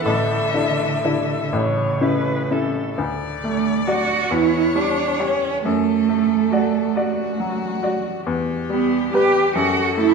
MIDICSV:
0, 0, Header, 1, 5, 480
1, 0, Start_track
1, 0, Key_signature, 2, "major"
1, 0, Tempo, 975610
1, 31, Time_signature, 6, 3, 24, 8
1, 1471, Tempo, 882353
1, 3871, Tempo, 857143
1, 5406, End_track
2, 0, Start_track
2, 0, Title_t, "Violin"
2, 0, Program_c, 0, 40
2, 28, Note_on_c, 0, 76, 80
2, 744, Note_off_c, 0, 76, 0
2, 1472, Note_on_c, 0, 74, 65
2, 2196, Note_on_c, 0, 73, 68
2, 2204, Note_off_c, 0, 74, 0
2, 2906, Note_off_c, 0, 73, 0
2, 2909, Note_on_c, 0, 69, 57
2, 3626, Note_on_c, 0, 66, 66
2, 3634, Note_off_c, 0, 69, 0
2, 4354, Note_off_c, 0, 66, 0
2, 4358, Note_on_c, 0, 67, 60
2, 5077, Note_on_c, 0, 69, 75
2, 5085, Note_off_c, 0, 67, 0
2, 5406, Note_off_c, 0, 69, 0
2, 5406, End_track
3, 0, Start_track
3, 0, Title_t, "Grand piano"
3, 0, Program_c, 1, 0
3, 0, Control_c, 1, 64, 127
3, 27, Note_on_c, 1, 33, 54
3, 27, Note_on_c, 1, 45, 59
3, 42, Control_c, 1, 64, 0
3, 121, Control_c, 1, 64, 127
3, 266, Note_on_c, 1, 62, 45
3, 268, Note_off_c, 1, 33, 0
3, 268, Note_off_c, 1, 45, 0
3, 270, Note_on_c, 1, 64, 39
3, 273, Note_on_c, 1, 76, 46
3, 497, Note_off_c, 1, 62, 0
3, 499, Note_off_c, 1, 64, 0
3, 500, Note_off_c, 1, 76, 0
3, 514, Note_on_c, 1, 62, 49
3, 515, Note_on_c, 1, 64, 49
3, 519, Note_on_c, 1, 76, 46
3, 736, Note_off_c, 1, 62, 0
3, 737, Note_off_c, 1, 64, 0
3, 739, Note_off_c, 1, 76, 0
3, 750, Note_on_c, 1, 33, 52
3, 752, Note_on_c, 1, 45, 61
3, 770, Control_c, 1, 64, 0
3, 867, Control_c, 1, 64, 127
3, 985, Note_off_c, 1, 33, 0
3, 986, Note_off_c, 1, 45, 0
3, 990, Note_on_c, 1, 64, 39
3, 991, Note_on_c, 1, 61, 43
3, 994, Note_on_c, 1, 76, 43
3, 1215, Note_off_c, 1, 61, 0
3, 1215, Note_off_c, 1, 64, 0
3, 1217, Note_off_c, 1, 76, 0
3, 1233, Note_on_c, 1, 64, 40
3, 1235, Note_on_c, 1, 61, 38
3, 1238, Note_on_c, 1, 76, 47
3, 1449, Note_off_c, 1, 64, 0
3, 1450, Note_off_c, 1, 61, 0
3, 1452, Note_off_c, 1, 76, 0
3, 1467, Note_on_c, 1, 38, 56
3, 1482, Control_c, 1, 64, 0
3, 1578, Control_c, 1, 64, 127
3, 1714, Note_on_c, 1, 57, 43
3, 1952, Note_on_c, 1, 66, 44
3, 1954, Note_on_c, 1, 74, 49
3, 2099, Note_off_c, 1, 57, 0
3, 2169, Note_off_c, 1, 66, 0
3, 2170, Note_off_c, 1, 74, 0
3, 2171, Note_off_c, 1, 38, 0
3, 2187, Note_on_c, 1, 40, 59
3, 2205, Control_c, 1, 64, 0
3, 2290, Control_c, 1, 64, 127
3, 2430, Note_on_c, 1, 55, 42
3, 2672, Note_on_c, 1, 67, 40
3, 2676, Note_on_c, 1, 73, 45
3, 2819, Note_off_c, 1, 55, 0
3, 2891, Note_off_c, 1, 40, 0
3, 2895, Note_off_c, 1, 67, 0
3, 2896, Note_off_c, 1, 73, 0
3, 2918, Note_on_c, 1, 42, 57
3, 2927, Control_c, 1, 64, 0
3, 3026, Control_c, 1, 64, 127
3, 3156, Note_on_c, 1, 57, 44
3, 3395, Note_on_c, 1, 66, 47
3, 3396, Note_on_c, 1, 74, 49
3, 3536, Note_off_c, 1, 57, 0
3, 3611, Note_off_c, 1, 66, 0
3, 3612, Note_off_c, 1, 74, 0
3, 3632, Note_on_c, 1, 66, 45
3, 3634, Note_on_c, 1, 74, 50
3, 3849, Note_off_c, 1, 66, 0
3, 3850, Note_off_c, 1, 74, 0
3, 3869, Note_on_c, 1, 54, 44
3, 4110, Note_on_c, 1, 66, 42
3, 4113, Note_on_c, 1, 74, 45
3, 4259, Note_off_c, 1, 54, 0
3, 4333, Note_off_c, 1, 66, 0
3, 4335, Note_off_c, 1, 74, 0
3, 4336, Note_off_c, 1, 42, 0
3, 4354, Note_on_c, 1, 40, 59
3, 4367, Control_c, 1, 64, 0
3, 4448, Control_c, 1, 64, 127
3, 4597, Note_on_c, 1, 55, 49
3, 4844, Note_on_c, 1, 67, 47
3, 4848, Note_on_c, 1, 71, 55
3, 4982, Note_off_c, 1, 55, 0
3, 5055, Note_off_c, 1, 40, 0
3, 5056, Note_off_c, 1, 67, 0
3, 5058, Note_off_c, 1, 71, 0
3, 5076, Note_on_c, 1, 42, 64
3, 5088, Control_c, 1, 64, 0
3, 5165, Control_c, 1, 64, 127
3, 5311, Note_on_c, 1, 57, 47
3, 5406, Note_off_c, 1, 42, 0
3, 5406, Note_off_c, 1, 57, 0
3, 5406, End_track
4, 0, Start_track
4, 0, Title_t, "Cello"
4, 0, Program_c, 2, 42
4, 29, Note_on_c, 2, 50, 64
4, 760, Note_on_c, 2, 49, 63
4, 767, Note_off_c, 2, 50, 0
4, 1368, Note_off_c, 2, 49, 0
4, 1723, Note_on_c, 2, 57, 71
4, 1945, Note_off_c, 2, 57, 0
4, 1959, Note_on_c, 2, 66, 82
4, 2194, Note_on_c, 2, 64, 76
4, 2202, Note_off_c, 2, 66, 0
4, 2432, Note_on_c, 2, 62, 69
4, 2440, Note_off_c, 2, 64, 0
4, 2672, Note_on_c, 2, 61, 70
4, 2680, Note_off_c, 2, 62, 0
4, 2914, Note_off_c, 2, 61, 0
4, 2917, Note_on_c, 2, 57, 79
4, 4092, Note_off_c, 2, 57, 0
4, 4598, Note_on_c, 2, 59, 81
4, 4824, Note_off_c, 2, 59, 0
4, 4842, Note_on_c, 2, 67, 84
4, 5073, Note_off_c, 2, 67, 0
4, 5077, Note_on_c, 2, 66, 83
4, 5307, Note_off_c, 2, 66, 0
4, 5317, Note_on_c, 2, 64, 80
4, 5406, Note_off_c, 2, 64, 0
4, 5406, End_track
5, 0, Start_track
5, 0, Title_t, "Viola"
5, 0, Program_c, 3, 41
5, 26, Note_on_c, 3, 69, 62
5, 697, Note_off_c, 3, 69, 0
5, 757, Note_on_c, 3, 73, 60
5, 995, Note_on_c, 3, 71, 59
5, 1002, Note_off_c, 3, 73, 0
5, 1241, Note_on_c, 3, 69, 53
5, 1248, Note_off_c, 3, 71, 0
5, 1473, Note_off_c, 3, 69, 0
5, 1954, Note_on_c, 3, 54, 57
5, 2132, Note_off_c, 3, 54, 0
5, 2672, Note_on_c, 3, 55, 56
5, 2854, Note_off_c, 3, 55, 0
5, 3388, Note_on_c, 3, 54, 59
5, 3568, Note_off_c, 3, 54, 0
5, 4119, Note_on_c, 3, 54, 57
5, 4298, Note_off_c, 3, 54, 0
5, 4842, Note_on_c, 3, 55, 63
5, 5018, Note_off_c, 3, 55, 0
5, 5406, End_track
0, 0, End_of_file